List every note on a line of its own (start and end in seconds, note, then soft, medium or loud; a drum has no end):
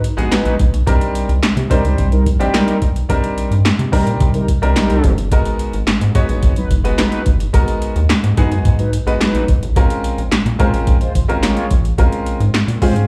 0.04 closed hi-hat medium
0.17 0.29 A#1 loud
0.17 0.53 G#3 loud
0.17 0.53 B3 medium
0.17 0.53 D#4 medium
0.17 0.53 F#4 medium
0.17 0.53 G#4 loud
0.17 closed hi-hat medium
0.32 0.55 F#3 medium
0.32 0.55 D#4 medium
0.32 0.55 B4 loud
0.32 snare loud
0.32 clap loud
0.32 closed hi-hat loud
0.45 0.57 A#1 medium
0.45 closed hi-hat medium
0.59 0.71 A#1 medium
0.59 kick loud
0.59 closed hi-hat medium
0.73 0.84 B1 medium
0.73 closed hi-hat medium
0.86 0.98 C2 loud
0.86 1.29 G3 medium
0.86 1.29 C4 medium
0.86 1.29 D4 medium
0.86 1.30 D#4 medium
0.86 1.30 A#4 loud
0.86 kick loud
0.86 closed hi-hat loud
1.01 closed hi-hat medium
1.15 closed hi-hat medium
1.29 1.40 C2 loud
1.29 closed hi-hat soft
1.43 1.48 C3 soft
1.43 snare loud
1.43 clap loud
1.43 closed hi-hat medium
1.57 1.68 C3 loud
1.57 closed hi-hat medium
1.70 2.06 G3 medium
1.70 1.82 G3 loud
1.70 2.06 C4 medium
1.70 2.06 D4 medium
1.70 2.06 D#4 medium
1.70 1.82 D#4 loud
1.70 1.82 A#4 loud
1.70 2.06 C5 loud
1.70 kick medium
1.70 closed hi-hat medium
1.84 1.95 C#2 loud
1.84 closed hi-hat medium
1.98 2.28 C2 loud
1.98 kick loud
1.98 closed hi-hat medium
2.12 2.24 G3 medium
2.12 2.24 D#4 medium
2.12 2.24 A#4 medium
2.12 closed hi-hat medium
2.26 2.48 A#1 medium
2.26 kick medium
2.26 closed hi-hat medium
2.39 2.75 G3 medium
2.39 2.75 C4 medium
2.39 2.75 D4 medium
2.39 2.75 D#4 medium
2.39 2.76 G4 loud
2.39 closed hi-hat medium
2.54 2.78 G3 medium
2.54 2.78 D#4 medium
2.54 2.78 A#4 loud
2.54 snare loud
2.54 clap loud
2.54 closed hi-hat loud
2.68 closed hi-hat medium
2.82 3.04 B1 medium
2.82 kick loud
2.82 closed hi-hat medium
2.96 closed hi-hat medium
3.09 3.20 C2 loud
3.09 3.52 G3 medium
3.09 3.52 C4 medium
3.09 3.52 D4 medium
3.09 3.52 D#4 medium
3.09 3.52 A#4 loud
3.09 kick loud
3.09 closed hi-hat loud
3.24 closed hi-hat medium
3.38 closed hi-hat medium
3.51 3.62 G2 loud
3.51 closed hi-hat soft
3.65 3.71 C3 soft
3.65 snare loud
3.65 clap loud
3.65 closed hi-hat medium
3.79 3.90 C3 loud
3.79 closed hi-hat medium
3.92 4.28 G3 medium
3.92 4.05 G3 loud
3.92 4.28 C4 medium
3.92 4.28 D4 medium
3.92 4.28 D#4 medium
3.92 4.05 D#4 loud
3.92 4.28 A#4 loud
3.92 4.05 A#4 loud
3.92 kick medium
3.92 open hi-hat medium
4.07 4.18 A#2 medium
4.07 closed hi-hat medium
4.20 4.43 C3 loud
4.20 kick loud
4.20 closed hi-hat medium
4.34 4.46 G3 medium
4.34 4.46 D#4 medium
4.34 4.46 A#4 medium
4.34 closed hi-hat soft
4.48 kick medium
4.48 closed hi-hat medium
4.62 4.73 C2 medium
4.62 4.97 G3 medium
4.62 4.98 C4 medium
4.62 4.98 D4 medium
4.62 4.98 D#4 medium
4.62 4.98 A#4 loud
4.62 closed hi-hat medium
4.76 5.11 G3 loud
4.76 5.11 D#4 loud
4.76 5.11 A#4 loud
4.76 snare loud
4.76 clap loud
4.76 closed hi-hat loud
4.90 5.01 C2 medium
4.90 closed hi-hat medium
5.04 5.15 F#1 medium
5.04 kick loud
5.04 closed hi-hat medium
5.18 5.29 G1 medium
5.18 closed hi-hat medium
5.32 5.43 G#1 loud
5.32 5.74 G#3 medium
5.32 5.74 B3 medium
5.32 5.74 D#4 medium
5.32 5.74 F#4 medium
5.32 5.75 A#4 medium
5.32 kick loud
5.32 closed hi-hat loud
5.45 closed hi-hat medium
5.59 closed hi-hat medium
5.73 5.84 G#1 loud
5.73 closed hi-hat soft
5.87 5.93 G#2 soft
5.87 snare loud
5.87 clap loud
5.87 closed hi-hat medium
6.01 6.12 G#2 loud
6.01 closed hi-hat medium
6.15 6.27 F#3 loud
6.15 6.50 G#3 medium
6.15 6.50 B3 medium
6.15 6.50 D#4 medium
6.15 6.27 D#4 loud
6.15 6.51 F#4 medium
6.15 6.27 B4 loud
6.15 6.51 C#5 loud
6.15 kick medium
6.15 closed hi-hat medium
6.29 6.40 A#1 medium
6.29 closed hi-hat medium
6.43 6.65 G#1 loud
6.43 kick loud
6.43 closed hi-hat medium
6.56 6.69 F#3 medium
6.56 6.69 D#4 medium
6.56 6.69 B4 loud
6.56 closed hi-hat soft
6.71 6.93 F#1 medium
6.71 kick medium
6.71 closed hi-hat medium
6.84 7.20 G#3 medium
6.84 7.20 B3 medium
6.84 7.20 D#4 medium
6.84 7.20 F#4 medium
6.84 7.20 B4 loud
6.84 closed hi-hat medium
6.98 7.22 F#3 medium
6.98 7.22 D#4 medium
6.98 7.22 B4 loud
6.98 snare loud
6.98 clap loud
6.98 closed hi-hat loud
7.12 closed hi-hat medium
7.26 7.48 G1 medium
7.26 kick loud
7.26 closed hi-hat medium
7.40 closed hi-hat medium
7.53 7.65 G#1 loud
7.53 7.96 G#3 medium
7.53 7.96 B3 medium
7.53 7.96 D#4 medium
7.53 7.96 F#4 medium
7.53 7.96 A#4 medium
7.53 kick loud
7.53 closed hi-hat loud
7.68 closed hi-hat medium
7.82 closed hi-hat medium
7.96 8.07 D#2 loud
7.96 closed hi-hat soft
8.10 8.15 G#2 soft
8.10 snare loud
8.10 clap loud
8.10 closed hi-hat medium
8.24 8.34 G#2 loud
8.24 closed hi-hat medium
8.37 8.49 F#3 loud
8.37 8.73 G#3 medium
8.37 8.73 B3 medium
8.37 8.73 D#4 medium
8.37 8.49 D#4 loud
8.37 8.73 F#4 medium
8.37 8.73 G#4 loud
8.37 8.49 B4 loud
8.37 kick loud
8.37 closed hi-hat medium
8.51 8.62 F#2 medium
8.51 closed hi-hat medium
8.65 8.87 G#2 loud
8.65 kick loud
8.65 closed hi-hat medium
8.79 8.91 F#3 medium
8.79 8.91 D#4 medium
8.79 8.91 B4 medium
8.79 closed hi-hat soft
8.93 closed hi-hat medium
9.07 9.18 A#1 medium
9.07 9.42 G#3 medium
9.07 9.42 B3 medium
9.07 9.42 D#4 medium
9.07 9.42 F#4 medium
9.07 9.42 B4 loud
9.07 closed hi-hat medium
9.21 9.44 F#3 medium
9.21 9.44 D#4 medium
9.21 9.44 B4 loud
9.21 snare loud
9.21 clap medium
9.21 closed hi-hat loud
9.34 9.45 A#1 medium
9.34 closed hi-hat medium
9.48 9.60 G#1 medium
9.48 kick loud
9.48 closed hi-hat medium
9.62 9.73 A1 medium
9.62 closed hi-hat medium
9.76 9.87 A#1 loud
9.76 10.19 G#3 medium
9.76 10.19 C4 medium
9.76 10.19 C#4 medium
9.76 10.19 F4 medium
9.76 10.19 A#4 loud
9.76 kick loud
9.76 closed hi-hat medium
9.90 closed hi-hat medium
10.04 closed hi-hat medium
10.18 10.29 A#1 loud
10.18 closed hi-hat soft
10.32 10.37 A#2 soft
10.32 snare loud
10.32 clap loud
10.32 closed hi-hat medium
10.46 10.57 A#2 loud
10.46 closed hi-hat medium
10.59 10.95 G#3 medium
10.59 10.71 G#3 loud
10.59 10.95 C4 medium
10.59 10.95 C#4 medium
10.59 10.71 F4 loud
10.59 10.95 F4 medium
10.59 10.95 A#4 loud
10.59 10.71 C5 loud
10.59 kick loud
10.59 closed hi-hat medium
10.74 10.84 A#1 medium
10.74 closed hi-hat medium
10.87 11.09 A#1 loud
10.87 kick loud
10.87 closed hi-hat medium
11.01 11.13 G#3 medium
11.01 11.13 F4 medium
11.01 11.13 C5 loud
11.01 closed hi-hat soft
11.15 11.37 G#1 medium
11.15 kick loud
11.15 closed hi-hat medium
11.28 11.64 G#3 medium
11.28 11.64 C4 medium
11.28 11.64 C#4 medium
11.28 11.64 F4 medium
11.28 11.64 A#4 loud
11.28 closed hi-hat medium
11.43 11.66 G#3 loud
11.43 11.67 F4 loud
11.43 11.66 C#5 loud
11.43 snare loud
11.43 clap loud
11.43 closed hi-hat loud
11.57 closed hi-hat medium
11.71 11.93 A1 loud
11.71 kick loud
11.71 closed hi-hat medium
11.85 closed hi-hat medium
11.98 12.09 A#1 loud
11.98 12.41 G#3 medium
11.98 12.41 C4 medium
11.98 12.41 C#4 medium
11.98 12.41 F4 medium
11.98 12.41 A#4 medium
11.98 kick loud
11.98 closed hi-hat loud
12.12 closed hi-hat medium
12.26 closed hi-hat medium
12.40 12.51 G#2 loud
12.40 closed hi-hat soft
12.54 12.59 A#2 soft
12.54 snare loud
12.54 clap loud
12.54 closed hi-hat medium
12.68 12.79 A#2 loud
12.68 closed hi-hat medium
12.82 13.07 G#3 medium
12.82 12.94 G#3 loud
12.82 13.07 C4 medium
12.82 13.07 C#4 medium
12.82 13.07 F4 medium
12.82 12.94 F4 loud
12.82 13.07 G#4 loud
12.82 12.94 C5 loud
12.82 kick medium
12.82 open hi-hat medium
12.96 13.07 G#2 medium
12.96 closed hi-hat medium